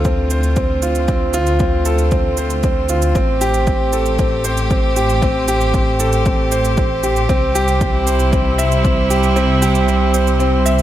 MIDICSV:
0, 0, Header, 1, 5, 480
1, 0, Start_track
1, 0, Key_signature, -1, "minor"
1, 0, Tempo, 517241
1, 1006, Time_signature, 4, 2, 24, 8
1, 10042, End_track
2, 0, Start_track
2, 0, Title_t, "Grand piano"
2, 0, Program_c, 0, 0
2, 0, Control_c, 0, 64, 127
2, 0, Note_on_c, 0, 60, 59
2, 0, Note_on_c, 0, 65, 85
2, 0, Note_on_c, 0, 69, 59
2, 0, Note_on_c, 0, 72, 63
2, 46, Note_off_c, 0, 60, 0
2, 46, Note_on_c, 0, 60, 69
2, 274, Note_off_c, 0, 60, 0
2, 285, Note_off_c, 0, 72, 0
2, 285, Note_on_c, 0, 72, 66
2, 514, Note_off_c, 0, 72, 0
2, 522, Note_on_c, 0, 60, 63
2, 661, Note_off_c, 0, 60, 0
2, 766, Note_off_c, 0, 65, 0
2, 766, Note_on_c, 0, 65, 60
2, 994, Note_off_c, 0, 65, 0
2, 1003, Note_on_c, 0, 60, 80
2, 1232, Note_off_c, 0, 60, 0
2, 1242, Note_on_c, 0, 65, 88
2, 1472, Note_off_c, 0, 65, 0
2, 1488, Note_on_c, 0, 60, 62
2, 1715, Note_off_c, 0, 60, 0
2, 1725, Note_off_c, 0, 69, 0
2, 1725, Note_on_c, 0, 69, 60
2, 1953, Note_off_c, 0, 69, 0
2, 1966, Note_on_c, 0, 60, 69
2, 2194, Note_off_c, 0, 60, 0
2, 2207, Note_on_c, 0, 72, 64
2, 2435, Note_off_c, 0, 72, 0
2, 2448, Note_on_c, 0, 60, 65
2, 2583, Note_off_c, 0, 60, 0
2, 2687, Note_on_c, 0, 65, 62
2, 2914, Note_off_c, 0, 65, 0
2, 2924, Note_on_c, 0, 60, 85
2, 2937, Control_c, 0, 64, 0
2, 3083, Control_c, 0, 64, 127
2, 3153, Note_off_c, 0, 60, 0
2, 3166, Note_on_c, 0, 67, 90
2, 3394, Note_off_c, 0, 67, 0
2, 3410, Note_on_c, 0, 60, 63
2, 3636, Note_off_c, 0, 60, 0
2, 3647, Note_on_c, 0, 69, 59
2, 3874, Note_off_c, 0, 69, 0
2, 3885, Note_on_c, 0, 60, 67
2, 4113, Note_off_c, 0, 60, 0
2, 4126, Note_on_c, 0, 72, 68
2, 4354, Note_off_c, 0, 72, 0
2, 4367, Note_on_c, 0, 60, 61
2, 4503, Note_off_c, 0, 60, 0
2, 4606, Note_on_c, 0, 67, 65
2, 4834, Note_off_c, 0, 67, 0
2, 4844, Note_on_c, 0, 60, 81
2, 5073, Note_off_c, 0, 60, 0
2, 5087, Note_on_c, 0, 67, 84
2, 5314, Note_off_c, 0, 67, 0
2, 5330, Note_on_c, 0, 60, 66
2, 5556, Note_off_c, 0, 60, 0
2, 5567, Note_on_c, 0, 69, 63
2, 5795, Note_off_c, 0, 69, 0
2, 5807, Note_on_c, 0, 60, 68
2, 6035, Note_off_c, 0, 60, 0
2, 6047, Note_on_c, 0, 72, 65
2, 6275, Note_off_c, 0, 72, 0
2, 6285, Note_on_c, 0, 60, 68
2, 6422, Note_off_c, 0, 60, 0
2, 6528, Note_on_c, 0, 67, 66
2, 6755, Note_off_c, 0, 67, 0
2, 6767, Note_on_c, 0, 60, 91
2, 6779, Control_c, 0, 64, 0
2, 6926, Control_c, 0, 64, 127
2, 6994, Note_off_c, 0, 60, 0
2, 7009, Note_on_c, 0, 67, 91
2, 7235, Note_off_c, 0, 67, 0
2, 7248, Note_on_c, 0, 60, 67
2, 7475, Note_off_c, 0, 60, 0
2, 7484, Note_on_c, 0, 72, 68
2, 7713, Note_off_c, 0, 72, 0
2, 7723, Note_on_c, 0, 60, 71
2, 7952, Note_off_c, 0, 60, 0
2, 7965, Note_on_c, 0, 76, 71
2, 8194, Note_off_c, 0, 76, 0
2, 8205, Note_on_c, 0, 60, 70
2, 8342, Note_off_c, 0, 60, 0
2, 8447, Note_on_c, 0, 67, 68
2, 8674, Note_off_c, 0, 67, 0
2, 8688, Note_on_c, 0, 60, 97
2, 8915, Note_off_c, 0, 60, 0
2, 8928, Note_on_c, 0, 67, 97
2, 9155, Note_off_c, 0, 67, 0
2, 9171, Note_on_c, 0, 60, 74
2, 9396, Note_off_c, 0, 60, 0
2, 9409, Note_on_c, 0, 72, 62
2, 9635, Note_off_c, 0, 72, 0
2, 9647, Note_on_c, 0, 60, 75
2, 9874, Note_off_c, 0, 60, 0
2, 9889, Note_on_c, 0, 76, 70
2, 10042, Note_off_c, 0, 76, 0
2, 10042, End_track
3, 0, Start_track
3, 0, Title_t, "String quartet"
3, 0, Program_c, 1, 48
3, 0, Note_on_c, 1, 50, 65
3, 0, Note_on_c, 1, 57, 66
3, 0, Note_on_c, 1, 65, 67
3, 0, Note_on_c, 1, 72, 50
3, 2924, Note_off_c, 1, 65, 0
3, 2924, Note_on_c, 1, 45, 66
3, 2925, Note_off_c, 1, 50, 0
3, 3069, Note_on_c, 1, 67, 78
3, 6761, Note_on_c, 1, 48, 78
3, 6762, Note_off_c, 1, 57, 0
3, 6765, Note_off_c, 1, 45, 0
3, 6882, Note_on_c, 1, 55, 77
3, 7323, Note_on_c, 1, 64, 73
3, 7876, Note_off_c, 1, 67, 0
3, 10042, Note_off_c, 1, 48, 0
3, 10042, Note_off_c, 1, 55, 0
3, 10042, Note_off_c, 1, 64, 0
3, 10042, Note_off_c, 1, 72, 0
3, 10042, End_track
4, 0, Start_track
4, 0, Title_t, "Detuned saw bass"
4, 0, Program_c, 2, 39
4, 0, Note_on_c, 2, 38, 77
4, 2904, Note_off_c, 2, 38, 0
4, 2926, Note_on_c, 2, 33, 79
4, 6742, Note_off_c, 2, 33, 0
4, 6769, Note_on_c, 2, 36, 87
4, 10042, Note_off_c, 2, 36, 0
4, 10042, End_track
5, 0, Start_track
5, 0, Title_t, "Drums"
5, 41, Note_on_c, 9, 82, 26
5, 46, Note_on_c, 9, 36, 92
5, 134, Note_off_c, 9, 82, 0
5, 139, Note_off_c, 9, 36, 0
5, 280, Note_on_c, 9, 82, 69
5, 373, Note_off_c, 9, 82, 0
5, 401, Note_on_c, 9, 82, 39
5, 494, Note_off_c, 9, 82, 0
5, 520, Note_on_c, 9, 82, 28
5, 526, Note_on_c, 9, 36, 89
5, 613, Note_off_c, 9, 82, 0
5, 619, Note_off_c, 9, 36, 0
5, 763, Note_on_c, 9, 82, 66
5, 856, Note_off_c, 9, 82, 0
5, 882, Note_on_c, 9, 82, 40
5, 975, Note_off_c, 9, 82, 0
5, 1001, Note_on_c, 9, 82, 28
5, 1005, Note_on_c, 9, 36, 94
5, 1094, Note_off_c, 9, 82, 0
5, 1098, Note_off_c, 9, 36, 0
5, 1238, Note_on_c, 9, 82, 67
5, 1331, Note_off_c, 9, 82, 0
5, 1360, Note_on_c, 9, 82, 37
5, 1453, Note_off_c, 9, 82, 0
5, 1479, Note_on_c, 9, 82, 27
5, 1486, Note_on_c, 9, 36, 100
5, 1572, Note_off_c, 9, 82, 0
5, 1578, Note_off_c, 9, 36, 0
5, 1719, Note_on_c, 9, 82, 69
5, 1812, Note_off_c, 9, 82, 0
5, 1841, Note_on_c, 9, 82, 36
5, 1933, Note_off_c, 9, 82, 0
5, 1960, Note_on_c, 9, 82, 28
5, 1965, Note_on_c, 9, 36, 91
5, 2053, Note_off_c, 9, 82, 0
5, 2058, Note_off_c, 9, 36, 0
5, 2200, Note_on_c, 9, 82, 63
5, 2293, Note_off_c, 9, 82, 0
5, 2321, Note_on_c, 9, 82, 41
5, 2413, Note_off_c, 9, 82, 0
5, 2441, Note_on_c, 9, 82, 29
5, 2446, Note_on_c, 9, 36, 96
5, 2534, Note_off_c, 9, 82, 0
5, 2539, Note_off_c, 9, 36, 0
5, 2679, Note_on_c, 9, 82, 63
5, 2772, Note_off_c, 9, 82, 0
5, 2802, Note_on_c, 9, 82, 40
5, 2895, Note_off_c, 9, 82, 0
5, 2924, Note_on_c, 9, 82, 28
5, 2927, Note_on_c, 9, 36, 89
5, 3017, Note_off_c, 9, 82, 0
5, 3020, Note_off_c, 9, 36, 0
5, 3165, Note_on_c, 9, 82, 64
5, 3258, Note_off_c, 9, 82, 0
5, 3284, Note_on_c, 9, 82, 37
5, 3377, Note_off_c, 9, 82, 0
5, 3404, Note_on_c, 9, 82, 28
5, 3408, Note_on_c, 9, 36, 92
5, 3497, Note_off_c, 9, 82, 0
5, 3501, Note_off_c, 9, 36, 0
5, 3643, Note_on_c, 9, 82, 62
5, 3735, Note_off_c, 9, 82, 0
5, 3765, Note_on_c, 9, 82, 39
5, 3858, Note_off_c, 9, 82, 0
5, 3885, Note_on_c, 9, 82, 25
5, 3889, Note_on_c, 9, 36, 93
5, 3977, Note_off_c, 9, 82, 0
5, 3981, Note_off_c, 9, 36, 0
5, 4122, Note_on_c, 9, 82, 66
5, 4215, Note_off_c, 9, 82, 0
5, 4243, Note_on_c, 9, 82, 40
5, 4336, Note_off_c, 9, 82, 0
5, 4365, Note_on_c, 9, 82, 29
5, 4368, Note_on_c, 9, 36, 98
5, 4458, Note_off_c, 9, 82, 0
5, 4461, Note_off_c, 9, 36, 0
5, 4605, Note_on_c, 9, 82, 64
5, 4698, Note_off_c, 9, 82, 0
5, 4727, Note_on_c, 9, 82, 40
5, 4820, Note_off_c, 9, 82, 0
5, 4847, Note_on_c, 9, 82, 26
5, 4848, Note_on_c, 9, 36, 93
5, 4939, Note_off_c, 9, 82, 0
5, 4941, Note_off_c, 9, 36, 0
5, 5085, Note_on_c, 9, 82, 62
5, 5178, Note_off_c, 9, 82, 0
5, 5204, Note_on_c, 9, 82, 34
5, 5297, Note_off_c, 9, 82, 0
5, 5325, Note_on_c, 9, 82, 27
5, 5328, Note_on_c, 9, 36, 86
5, 5418, Note_off_c, 9, 82, 0
5, 5421, Note_off_c, 9, 36, 0
5, 5564, Note_on_c, 9, 82, 66
5, 5657, Note_off_c, 9, 82, 0
5, 5684, Note_on_c, 9, 82, 38
5, 5777, Note_off_c, 9, 82, 0
5, 5805, Note_on_c, 9, 82, 26
5, 5809, Note_on_c, 9, 36, 96
5, 5898, Note_off_c, 9, 82, 0
5, 5902, Note_off_c, 9, 36, 0
5, 6046, Note_on_c, 9, 82, 67
5, 6139, Note_off_c, 9, 82, 0
5, 6168, Note_on_c, 9, 82, 37
5, 6261, Note_off_c, 9, 82, 0
5, 6284, Note_on_c, 9, 82, 27
5, 6289, Note_on_c, 9, 36, 94
5, 6377, Note_off_c, 9, 82, 0
5, 6381, Note_off_c, 9, 36, 0
5, 6526, Note_on_c, 9, 82, 62
5, 6619, Note_off_c, 9, 82, 0
5, 6647, Note_on_c, 9, 82, 37
5, 6740, Note_off_c, 9, 82, 0
5, 6767, Note_on_c, 9, 82, 27
5, 6768, Note_on_c, 9, 36, 91
5, 6860, Note_off_c, 9, 82, 0
5, 6861, Note_off_c, 9, 36, 0
5, 7008, Note_on_c, 9, 82, 61
5, 7101, Note_off_c, 9, 82, 0
5, 7126, Note_on_c, 9, 82, 38
5, 7219, Note_off_c, 9, 82, 0
5, 7247, Note_on_c, 9, 82, 27
5, 7249, Note_on_c, 9, 36, 90
5, 7340, Note_off_c, 9, 82, 0
5, 7342, Note_off_c, 9, 36, 0
5, 7488, Note_on_c, 9, 82, 64
5, 7581, Note_off_c, 9, 82, 0
5, 7605, Note_on_c, 9, 82, 39
5, 7697, Note_off_c, 9, 82, 0
5, 7727, Note_on_c, 9, 82, 27
5, 7729, Note_on_c, 9, 36, 86
5, 7820, Note_off_c, 9, 82, 0
5, 7822, Note_off_c, 9, 36, 0
5, 7969, Note_on_c, 9, 82, 66
5, 8062, Note_off_c, 9, 82, 0
5, 8089, Note_on_c, 9, 82, 39
5, 8182, Note_off_c, 9, 82, 0
5, 8208, Note_on_c, 9, 82, 28
5, 8210, Note_on_c, 9, 36, 97
5, 8301, Note_off_c, 9, 82, 0
5, 8303, Note_off_c, 9, 36, 0
5, 8448, Note_on_c, 9, 82, 59
5, 8541, Note_off_c, 9, 82, 0
5, 8567, Note_on_c, 9, 82, 40
5, 8660, Note_off_c, 9, 82, 0
5, 8687, Note_on_c, 9, 82, 29
5, 8780, Note_off_c, 9, 82, 0
5, 8928, Note_on_c, 9, 82, 67
5, 9021, Note_off_c, 9, 82, 0
5, 9047, Note_on_c, 9, 82, 36
5, 9140, Note_off_c, 9, 82, 0
5, 9171, Note_on_c, 9, 82, 27
5, 9264, Note_off_c, 9, 82, 0
5, 9410, Note_on_c, 9, 82, 67
5, 9503, Note_off_c, 9, 82, 0
5, 9533, Note_on_c, 9, 82, 37
5, 9626, Note_off_c, 9, 82, 0
5, 9651, Note_on_c, 9, 82, 28
5, 9743, Note_off_c, 9, 82, 0
5, 9891, Note_on_c, 9, 82, 67
5, 9984, Note_off_c, 9, 82, 0
5, 10010, Note_on_c, 9, 82, 37
5, 10042, Note_off_c, 9, 82, 0
5, 10042, End_track
0, 0, End_of_file